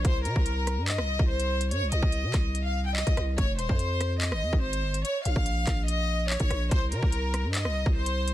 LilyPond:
<<
  \new Staff \with { instrumentName = "Violin section" } { \time 4/4 \key c \phrygian \tempo 4 = 144 c''8 bes'4. ees''4 c''4 | des''8 ees''4.~ ees''16 f''8 g''16 ees''8 r8 | des''8 c''4. ees''4 c''4 | des''8 f''4. ees''4 des''4 |
c''8 bes'4. ees''4 c''4 | }
  \new Staff \with { instrumentName = "808-style bass" } { \clef bass \time 4/4 \key c \phrygian c,8 c16 c,4 g,8 c,8 c,4~ c,16 | g,16 c,16 c,16 c,8 c16 c,4.~ c,16 c,16 c,8 | f,,8 ees,,16 f,4. g,,16 f,16 aes,,8. g,,16 aes,,16 | r8 bes,,16 bes,,8. bes,,4.~ bes,,16 bes,,16 bes,,8 |
c,8 c16 c,4 g,8 c,8 c,4~ c,16 | }
  \new DrumStaff \with { instrumentName = "Drums" } \drummode { \time 4/4 <hh bd>8 hh16 bd16 hh8 <hh ss>8 <hc hh>16 ss8 bd16 r16 hh8 hh16 | hh8 hh16 bd16 hh8 <hc hh bd ss>8 hh4 hc16 <hh bd>16 <hh ss>8 | <hh bd>8 hh16 bd16 hh8 <hh ss>8 <hc hh>16 ss8 bd16 r16 hh8 hh16 | hh8 hh16 bd16 hh8 <hc hh bd>8 hh4 hc16 <hh bd>16 <hh ss>8 |
<hh bd>8 hh16 bd16 hh8 <hh ss>8 <hc hh>16 ss8 bd16 r16 hh8 hh16 | }
>>